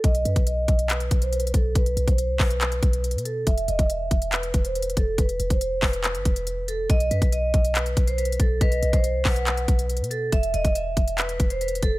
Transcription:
<<
  \new Staff \with { instrumentName = "Soft synth lead" } { \time 4/4 \key b \phrygian \tempo 4 = 140 r1 | r1 | r1 | r1 |
r1 | dis''4. fis''4. r4 | r1 | }
  \new Staff \with { instrumentName = "Vibraphone" } { \time 4/4 \key b \phrygian dis''8 b'8 dis''4 b'8. c''16 b'8 a'8 | b'8. c''8. b'2 a'8 | e''8 dis''8 e''4 b'8. c''16 b'8 a'8 | b'8. c''8. b'2 a'8 |
dis''8 b'8 dis''4 b'8. c''16 b'8 a'8 | b'8. c''8. b'2 a'8 | e''8 dis''8 e''4 b'8. c''16 b'8 a'8 | }
  \new Staff \with { instrumentName = "808-style bass" } { \clef bass \time 4/4 \key b \phrygian b,,8 fis,16 b,,8. b,,4 b,,4 b,,8 | b,,8 b,,16 b,,8 c,16 b,,4 b,,8. b,8. | e,,8 e,,16 e,,8. e,,4 e,,4 e,,8 | e,,8 e,,16 e,,8. e,,8. g,,16 e,,4. |
b,,8 fis,16 b,,8. b,,4 b,,4 b,,8 | b,,8 b,,16 b,,8 c,16 b,,4 b,,8. b,8. | e,,8 e,,16 e,,8. e,,4 e,,4 e,,8 | }
  \new DrumStaff \with { instrumentName = "Drums" } \drummode { \time 4/4 <hh bd>16 hh16 hh16 <hh bd>16 hh8 <hh bd>16 hh16 <hc hh>16 hh16 <hh bd>16 hh16 \tuplet 3/2 { hh16 hh16 hh16 <hh bd>16 r16 r16 } | <hh bd>16 hh16 hh16 <hh bd>16 hh8 <hc hho bd>16 hh16 <hc hh>16 hh16 <hh bd>16 hh16 \tuplet 3/2 { hh16 hh16 hh16 hh16 r16 r16 } | <hh bd>16 hh16 hh16 <hh bd>16 hh8 <hh bd>16 hh16 <hc hh>16 hh16 <hh bd>16 hh16 \tuplet 3/2 { hh16 hh16 hh16 <hh bd>16 r16 r16 } | <hh bd>16 hh16 hh16 <hh bd>16 hh8 <hc hho bd>16 hh16 <hc hh>16 hh16 <hh bd>16 hh16 hh8 hh8 |
<hh bd>16 hh16 hh16 <hh bd>16 hh8 <hh bd>16 hh16 <hc hh>16 hh16 <hh bd>16 hh16 \tuplet 3/2 { hh16 hh16 hh16 <hh bd>16 r16 r16 } | <hh bd>16 hh16 hh16 <hh bd>16 hh8 <hc hho bd>16 hh16 <hc hh>16 hh16 <hh bd>16 hh16 \tuplet 3/2 { hh16 hh16 hh16 hh16 r16 r16 } | <hh bd>16 hh16 hh16 <hh bd>16 hh8 <hh bd>16 hh16 <hc hh>16 hh16 <hh bd>16 hh16 \tuplet 3/2 { hh16 hh16 hh16 <hh bd>16 r16 r16 } | }
>>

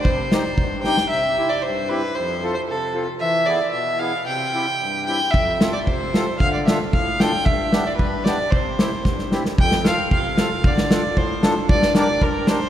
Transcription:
<<
  \new Staff \with { instrumentName = "Fiddle" } { \time 2/4 \key c \minor \tempo 4 = 114 c''4. g''8 | \key c \major e''8. d''16 c''8 b'8 | c''8. c''16 a'8. r16 | e''8 d''8 e''8 f''8 |
g''4. g''8 | e''8. d''16 c''4 | f''16 d''16 e''8 f''8 g''8 | e''8. d''16 b'8 d''8 |
c''4. r8 | \key f \major g''8 f''8 f''4 | d''4 c''8. r16 | d''8 d''8 bes'8 c''8 | }
  \new Staff \with { instrumentName = "Accordion" } { \time 2/4 \key c \minor r8 <c' ees' g'>8 r8 <c' ees' g'>8 | \key c \major r8 <c' e' g'>8 r8 <c' e' g'>8 | r8 <c' f' a'>8 r8 <c' f' a'>8 | r8 <b e' gis'>8 r8 <b e' gis'>8 |
r8 <c' e' g'>8 r8 <c' e' g'>8 | r8 <c' f' a'>8 r8 <c' f' a'>8 | r8 <d' f' a'>8 r8 <d' f' a'>8 | r8 <b d' g'>8 r8 <b d' g'>8 |
r8 <c' e' g'>8 r8 <c' e' g'>8 | \key f \major r8 <c' f' a'>8 r8 <c' f' a'>8 | r8 <d' f' a'>8 r8 <d' f' a'>8 | r8 <d' g' bes'>8 r8 <d' g' bes'>8 | }
  \new Staff \with { instrumentName = "Accordion" } { \clef bass \time 2/4 \key c \minor c4 g,4 | \key c \major c4 g,4 | f,4 c4 | e4 b,4 |
c4 g,4 | f,4 c4 | d4 a,4 | g,4 g,4 |
c4 g,4 | \key f \major f,4 c4 | d4 a,4 | g,4 g,4 | }
  \new DrumStaff \with { instrumentName = "Drums" } \drummode { \time 2/4 bd8 sn8 bd8 sn16 sn16 | r4 r4 | r4 r4 | r4 r4 |
r4 r4 | bd8 sn8 bd8 sn8 | bd8 sn8 bd8 sn8 | bd8 sn8 bd8 sn8 |
bd8 sn8 <bd sn>16 sn16 sn16 sn16 | bd16 sn16 <hhp sn>8 bd8 <hhp sn>8 | bd16 sn16 <hhp sn>8 bd8 <hhp sn>8 | bd16 sn16 <hhp sn>8 bd8 <hhp sn>8 | }
>>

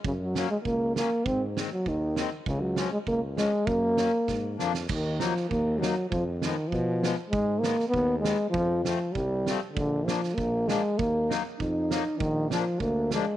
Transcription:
<<
  \new Staff \with { instrumentName = "Accordion" } { \time 2/4 \key fis \major \tempo 4 = 99 r8 <fis ais cis'>8 r8 <fis ais cis'>8 | r8 <dis gis bis>8 r8 <dis gis bis>8 | r8 <eis gis cis'>8 r8 <eis gis cis'>8 | r8 <fis ais cis'>8 r8 <eis ais d'>8 |
\key ees \minor r8 <ges bes ees'>8 r8 <ges bes ees'>8 | r8 <f aes ces'>8 r8 <f aes ces'>8 | r8 <ees aes ces'>8 r8 <ees aes ces'>8 | r8 <f a c'>8 r8 <f a c'>8 |
r8 <f bes d'>8 r8 <f bes d'>8 | r8 <ges bes ees'>8 r8 <ges bes ees'>8 | r8 <f bes d'>8 r8 <f bes d'>8 | }
  \new Staff \with { instrumentName = "Euphonium" } { \clef bass \time 2/4 \key fis \major cis16 fis8 gis16 ais8 ais8 | bis16 r8 fis16 dis8. r16 | cis16 fis8 gis16 ais8 gis8 | ais4. r8 |
\key ees \minor ees8 f8 bes8 ges8 | f8 ees8 f8. r16 | aes8 bes8 ces'8 aes8 | f8 f8 g8. r16 |
d8 f8 bes8 aes8 | bes8 r8 ees'4 | ees8 f8 bes8 aes8 | }
  \new Staff \with { instrumentName = "Tuba" } { \clef bass \time 2/4 \key fis \major fis,4 cis,4 | gis,4 dis,4 | cis,4 cis,4 | fis,4 gis,8 eis,8 |
\key ees \minor ees,4 ees,4 | f,4 ces4 | aes,4 ees,4 | f,4 c,4 |
bes,,4 bes,,4 | ees,4 f,4 | bes,,4 d,4 | }
  \new DrumStaff \with { instrumentName = "Drums" } \drummode { \time 2/4 bd8 sn8 bd8 sn8 | bd8 sn8 bd8 sn8 | bd8 sn8 bd8 sn8 | bd8 sn8 <bd sn>8 sn16 sn16 |
<cymc bd>8 sn16 sn16 bd8 sn8 | bd8 sn8 bd8 sn8 | bd8 sn16 sn16 bd8 sn8 | bd8 sn8 bd8 sn8 |
bd8 sn16 sn16 bd8 sn8 | bd8 sn8 bd8 sn8 | bd8 sn8 bd8 sn8 | }
>>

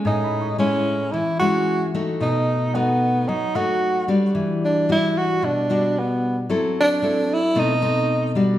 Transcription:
<<
  \new Staff \with { instrumentName = "Grand piano" } { \time 4/4 \key b \phrygian \tempo 4 = 112 gis''16 b''16 cis'''2.~ cis'''8~ | cis'''16 r8. fis''2.~ | fis''8 r2. r8 | r1 | }
  \new Staff \with { instrumentName = "Tenor saxophone" } { \time 4/4 \key b \phrygian dis'4 cis'4 e'8 fis'4 r8 | dis'4 b4 dis'8 fis'4 r8 | r8 d'8 e'8 fis'8 d'4 b8. r16 | r8 d'4 e'8 dis'4. r8 | }
  \new Staff \with { instrumentName = "Nylon-string guitar" } { \time 4/4 \key b \phrygian << { <gis cis'>4 <gis cis' e'>4 r8 <gis cis' e'>4 <a dis' fis'>8~ | <a dis' fis'>4 <a dis' fis'>4 r8 <a dis' fis'>4 <g d' fis'>8~ | <g d' fis'>4 <g d' fis'>4. <g d' fis'>4. | <c' e' a'>4 <c' e' a'>8 r8 <a c' dis'>8 <a c' dis'>4 <g d' fis'>8 | } \\ { a,2 e2 | b,2 fis2 | e2 b,2 | fis2 b,2 | } >> }
>>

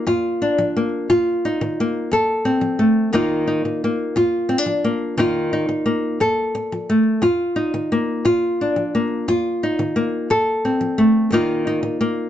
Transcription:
\new Staff \with { instrumentName = "Nylon-string guitar" } { \time 12/8 \key ees \lydian \tempo 4. = 117 << { f'4 d'4 bes4 f'4 ees'4 bes4 | a'4 c'4 a4 <ees bes ees' f'>4 ees'4 bes4 | f'4 c'16 d'8. bes4 <ees bes ees' f'>4 ees'4 bes4 | a'2 a4 f'4 ees'4 bes4 |
f'4 d'4 bes4 f'4 ees'4 bes4 | a'4 c'4 a4 <ees bes ees' f'>4 ees'4 bes4 | } \\ { f,4 r8 f4 r8 f,4 r8 ees4 r8 | f,4 r8 f4 r8 f,4 r8 ees4 r8 | f,4 r8 f4 r8 f,4 r8 ees4 r8 | f,4 r8 f4 r8 f,4 r8 ees4 r8 |
f,4 r8 f4 r8 f,4 r8 ees4 r8 | f,4 r8 f4 r8 f,4 r8 ees4 r8 | } >> }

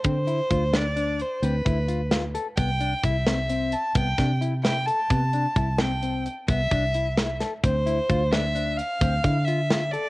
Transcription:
<<
  \new Staff \with { instrumentName = "Violin" } { \time 11/8 \key d \dorian \tempo 4 = 130 c''4. d''4 c''8 b'4. r4 | g''4 e''4. a''8 g''4 r8 g''8 a''8~ | a''4. g''4 r8 e''2 r8 | c''4. e''4 f''4. e''4 d''8 | }
  \new Staff \with { instrumentName = "Clean electric guitar" } { \time 11/8 \key d \dorian c'8 e'8 f'8 d'8 d'4 c'8 e'8 f'8 f'8 a'8 | b8 d'8 e'8 c'8 c'4 b8 d'8 e'8 e'8 a'8 | b8 d'8 e'8 c'8 c'4 b8 d'8 e'8 e'8 a'8 | c'8 e'8 f'8 d'8 d'4 c'8 e'8 f'8 f'8 a'8 | }
  \new Staff \with { instrumentName = "Fingered electric bass" } { \clef bass \time 11/8 \key d \dorian d4 d,2 d,8 d,2 | c,4 c,2 c,8 c2 | c4 c,2 c,8 c,2 | d,4 d,2 d,8 d2 | }
  \new DrumStaff \with { instrumentName = "Drums" } \drummode { \time 11/8 <hh bd>8 hh8 <hh bd>8 <hh sn>8 hh8 hh8 hh8 <hh bd>8 hh8 <hh sn>8 hh8 | <hh bd>8 hh8 <hh bd>8 <hh sn>8 hh8 hh8 <hh bd>8 <hh bd sn>8 hh8 <hh sn>8 hh8 | <hh bd>8 hh8 <hh bd>8 <hh sn>8 hh8 hh8 <hh bd>8 <hh bd>8 hh8 <hh sn>8 <hh sn>8 | <hh bd>8 hh8 <hh bd>8 <hh sn>8 hh8 hh8 <hh bd>8 <hh bd>8 hh8 <hh sn>8 hh8 | }
>>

